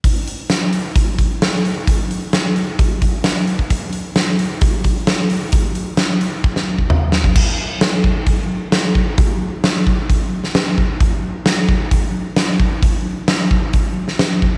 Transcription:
\new DrumStaff \with { instrumentName = "Drums" } \drummode { \time 4/4 \tempo 4 = 131 <hho bd>8 hho8 <hho sn>8 hho8 <hho bd>8 <hho bd>8 <hho sn>8 hho8 | <hho bd>8 hho8 <hho sn>8 hho8 <hho bd>8 <hho bd>8 <hho sn>8 hho16 bd16 | <hho bd>8 hho8 <hho sn>8 hho8 <hho bd>8 <hho bd>8 <hho sn>8 hho8 | <hho bd>8 hho8 <hho sn>8 hho8 bd16 sn8 bd16 toml8 sn16 bd16 |
<cymc bd>4 <hho sn>8 bd8 <hho bd>4 <hho sn>8 bd8 | <hho bd>4 <hho sn>8 bd8 <hho bd>8. sn16 <hho sn>8 bd8 | <hho bd>4 <hho sn>8 bd8 <hho bd>4 <hho sn>8 bd8 | <hho bd>4 <hho sn>8 bd8 <hho bd>8. sn16 <hho sn>8 bd8 | }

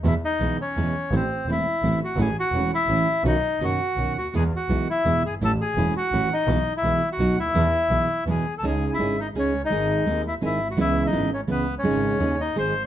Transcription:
<<
  \new Staff \with { instrumentName = "Bandoneon" } { \time 3/4 \key e \major \tempo 4 = 168 <e' e''>8 <dis' dis''>4 <cis' cis''>4. | <c' c''>4 <e' e''>4. <fis' fis''>8 | <gis' gis''>8 <fis' fis''>4 <e' e''>4. | <dis' dis''>4 <fis' fis''>4. <fis' fis''>8 |
<gis' gis''>8 <fis' fis''>4 <e' e''>4 <gis' gis''>8 | <a' a''>8 <gis' gis''>4 <fis' fis''>4 <dis' dis''>8~ | <dis' dis''>8. <e' e''>4 <fis' fis''>8. <e' e''>8~ | <e' e''>2 <gis' gis''>8. <a' a''>16 |
\key cis \minor <gis' gis''>8. <e' e''>8. <dis' dis''>8 <cis' cis''>8. <dis' dis''>16~ | <dis' dis''>4. <e' e''>8 <e' e''>8. <fis' fis''>16 | <e' e''>8. <dis' dis''>8. <cis' cis''>8 <b b'>8. <cis' cis''>16~ | <cis' cis''>4. <dis' dis''>8 <bis' bis''>8. r16 | }
  \new Staff \with { instrumentName = "Nylon-string guitar" } { \time 3/4 \key e \major <b, e gis b e'>16 r8. <b, e gis b e'>8 r8 <b, e gis b e'>8 r8 | <e a c' e'>16 r8. <e a c' e'>8 r8 <e a c' e'>8 r8 | <e a cis' e'>16 r8. <e a cis' e'>8 r8 <e a cis' e'>8 r8 | <b, dis cis' fis'>16 r8. <b, dis cis' fis'>8 r8 <b, dis cis' fis'>8 r8 |
<b, e gis b e'>16 r8. <b, e gis b e'>8 r8 <b, e gis b e'>8 r8 | <e a cis' e'>16 r8. <e a cis' e'>8 r8 <e a cis' e'>8 r8 | <b, e gis b e'>16 r8. <b, e gis b e'>8 r8 <b, fis b dis' fis'>8 r8 | <b, e gis b e'>16 r8. <b, e gis b e'>8 r8 <b, e gis b e'>8 r8 |
\key cis \minor <cis gis cis' dis' gis'>4 <cis gis cis' dis' gis'>8 r8 <cis gis cis' dis' gis'>8 r8 | <dis gis bis dis' gis'>4 <dis gis bis dis' gis'>8 r8 <dis gis bis dis' gis'>8 r8 | <cis e gis b e'>4 <cis e gis b e'>8 r8 <cis e gis b e'>8 r8 | <cis gis cis' dis' gis'>4 <cis gis cis' dis' gis'>8 r8 <dis gis bis dis' gis'>8 r8 | }
  \new Staff \with { instrumentName = "Double bass" } { \clef bass \time 3/4 \key e \major e,8 r8 b,,8 r8 e,8 r8 | a,,8 r8 e,,8 r8 a,,8 r8 | a,,8 r8 e,,8 r8 a,,8 r8 | b,,8 r8 fis,,8 r8 b,,8 d,8 |
e,8 r8 b,,8 r8 e,8 g,,8 | a,,8 r8 e,,8 r8 a,,8 r8 | b,,8 r8 b,,8 r8 b,,8 d,8 | e,8 r8 b,,8 r8 e,8 r8 |
\key cis \minor cis,4 gis,,4 cis,4 | gis,,4 dis,4 gis,,4 | cis,4 gis,,4 cis,4 | gis,,4 dis,4 gis,,4 | }
>>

